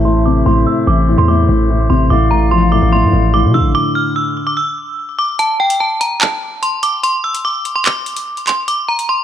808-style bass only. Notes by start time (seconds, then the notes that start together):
Already playing: A1
0.46 A1
0.87 A1
1.18 E2
1.49 A1
1.90 A1
2.10 A1
2.82 A1
3.03 A2
3.13 A1
3.44 C3
3.59 A1